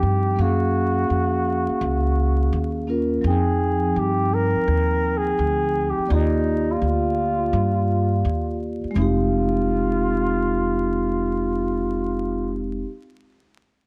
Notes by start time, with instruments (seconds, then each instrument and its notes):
Already playing: vibraphone F3 C4 D#4 G5, muted trumpet G4
0.03 upright bass G2
0.36 upright bass F#2, vibraphone A#3 C#4 F5
0.41 muted trumpet F#4, vibraphone G#4
1.10 upright bass F2
1.69 muted upright bass stroke
1.81 upright bass C#2
2.53 upright bass D#2
2.87 vibraphone A#3 C#4 F4 A#4
3.21 upright bass F2, vibraphone F3 C4 D#4
3.26 muted trumpet G#4, vibraphone G5
3.96 upright bass G2, muted trumpet G4
4.34 muted trumpet A#4
4.56 muted upright bass stroke
4.68 upright bass D#2
5.17 muted trumpet G#4
5.39 upright bass D2
5.90 muted trumpet G4
5.98 muted upright bass stroke
6.07 upright bass D#2, vibraphone A#3 F4 D5
6.12 muted trumpet D#4, vibraphone G4
6.72 muted trumpet F4
6.82 upright bass D2
7.53 upright bass G2
8.25 upright bass D#2
8.84 muted upright bass stroke
8.91 vibraphone G#3 C4
8.96 upright bass F1, vibraphone D#4, muted trumpet F4
9.02 vibraphone G4